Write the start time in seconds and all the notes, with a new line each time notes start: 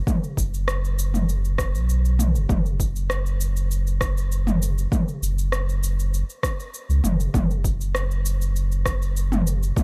0.07 kick, mid tom, cabasa
0.24 cabasa
0.37 F#1, kick, cabasa
0.54 cabasa
0.68 cross-stick, cabasa
0.85 cabasa
0.99 cabasa
1.14 mid tom, cabasa
1.29 cabasa
1.45 cabasa
1.58 kick, cross-stick, cabasa
1.74 B1, cabasa
1.90 cabasa
2.05 cabasa
2.19 mid tom, cabasa
2.35 F#1, cabasa
2.49 F#1, kick, mid tom, cabasa
2.66 cabasa
2.80 kick, cabasa
2.96 cabasa
3.10 cross-stick, cabasa
3.26 cabasa
3.41 cabasa
3.57 cabasa
3.71 cabasa
3.87 cabasa
4.01 kick, cross-stick, cabasa
4.17 cabasa
4.32 cabasa
4.47 mid tom, cabasa
4.62 cabasa
4.78 cabasa
4.92 kick, mid tom, cabasa
5.08 cabasa
5.22 F#1, cabasa
5.38 cabasa
5.52 cross-stick, cabasa
5.69 cabasa
5.84 cabasa
6.00 cabasa
6.14 cabasa
6.30 cabasa
6.43 kick, cross-stick, cabasa
6.60 cabasa
6.74 cabasa
6.89 C#2, cabasa
7.04 F#1, mid tom, cabasa
7.20 cabasa
7.34 F#1, kick, mid tom, cabasa
7.51 cabasa
7.64 kick, cabasa
7.81 cabasa
7.95 cross-stick, cabasa
8.11 cabasa
8.26 cabasa
8.41 cabasa
8.56 cabasa
8.72 cabasa
8.86 kick, cross-stick, cabasa
9.02 cabasa
9.17 cabasa
9.32 mid tom, cabasa
9.47 cabasa
9.63 cabasa
9.76 kick, mid tom, cabasa